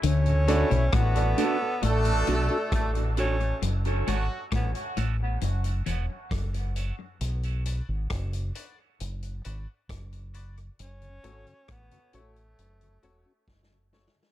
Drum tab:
HH |x--x--x--x--x--x--x-----x--x--x-----x--x--x--x--|x--x--x-----x--x--x-----x--x--x-----x--x--x-----|x--x--x-----x--x--x-----x--x--x-----x--x--x--x--|x--x--x--x--x--x--x--x--x--x--x-----------------|
SD |------------r-----------------------r-----------|------------r-----------------------r-----------|------------r-----------------------r-----------|------------r-----------------------o-o---o-o-o-|
BD |------------o-----------------------o-----------|------------o-----------------------o-----------|------------o-----------------------o-----------|------------o-----------------------o-----------|